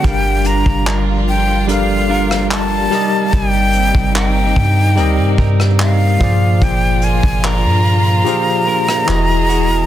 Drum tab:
HH |x-x-x---x---x-x-|x-x-----x---x-x-|x-x-x---x---x-x-|
CP |----x-------x---|----x-------x---|----x-------x---|
SD |-----------r----|-----------r----|-----------r----|
BD |o--o------------|o--o--o---o---o-|o--o------------|